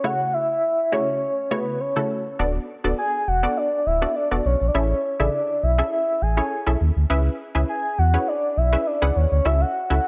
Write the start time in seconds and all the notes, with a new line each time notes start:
0.04 C#3 A3 E4 F#4 C#5 F#5
0.33 E5
0.92 C#3 A3 E4 F#4 C#5
1.51 C#3 A3 E4 F#4 B4 C#5
1.81 C#5
1.96 C#3 A3 E4 F#4 A4
2.39 D1 B3 D4 F#4 A4 D5
2.84 D1 B3 D4 F#4 A4 D5
2.98 G#5
3.28 E1 F#5
3.43 B3 D4 F#4 A4 D5
3.57 D5
3.86 D1 E5
4.02 B3 D4 F#4 A4 D5
4.16 D5
4.31 E1 B3 D4 F#4 A4 D5
4.45 B1 C#5
4.61 A#1
4.68 D5
4.74 A1 C#4 E4 G#4 A4 C#5 E5
5.19 A1 C#3 E4 G#4 A4 D5 E5
5.63 B1 E5
5.78 C#4 E4 G#4 A4 E5
5.92 E5
6.22 A1 G#5
6.37 C#4 E4 G#4 A4 C#5
6.66 B1 C#4 E4 G#4 A4 E5
6.81 D#2
6.96 D2
7.10 C#2 C#4 E4 G#4 B4 E5
7.55 C#2 C#4 E4 G#4 B4 E5
7.69 G#5
7.98 E2 F#5
8.14 C#4 E4 G#4 B4 C#5
8.28 D5
8.57 B1 E5
8.73 C#4 E4 G#4 B4 E5
8.87 D5
9.02 C#2 C#4 E4 G#4 B4 F#5
9.16 D#2 C#5
9.31 D2 C#5
9.45 C#2 C#4 E4 F#4 A4 E5
9.61 F#5
9.90 C#2 C#4 E4 F#4 A4 E5 F#5